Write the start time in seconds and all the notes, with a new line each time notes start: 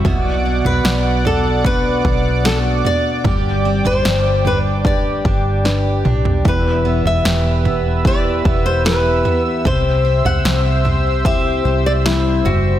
Already playing: C4 F#4
0.04 B1 B2 F#4 D5 F#5 D6, kick, floor tom
0.45 D4
0.65 B1 B4, floor tom
0.85 B1 F#4, snare
1.25 D4 A4, floor tom
1.65 B3 D4 F#4 B4, kick, floor tom
2.05 B1 D4, kick
2.44 B3 D4 F#4 A4, snare
2.85 D4 D5, floor tom
3.25 G1 G2 G3 G4 G5, kick, floor tom
3.65 C4
3.85 G1 D4 C5, floor tom
4.05 G1 G4, snare
4.45 D4 B4, floor tom
4.85 D4 G4 B4 D5, kick, floor tom
5.25 G1 D4, kick
5.65 D4 G4 B4, snare
6.05 B1 D4, mid tom
6.25 floor tom
6.44 E1 E2 E3 G4 B4 E5 E6, kick, floor tom
6.48 B4
6.85 B3
7.05 E1 E5, floor tom
7.25 E1 G4, snare
7.65 B3, floor tom
8.05 E4 G4 B4 D5, kick, floor tom
8.45 E1 B3, kick
8.66 C5
8.85 E4 G4 B4, snare
9.25 B3, floor tom
9.65 C2 C3 G4 C5, kick, floor tom
10.05 C4
10.25 C2 F#5, floor tom
10.45 C2 G4, snare
10.85 C4, floor tom
11.24 C4 E4 G4 E5, kick, floor tom
11.65 C2 C4
11.86 D5
12.05 G3 C4 E4, snare
12.45 F#1 C4 F#4, floor tom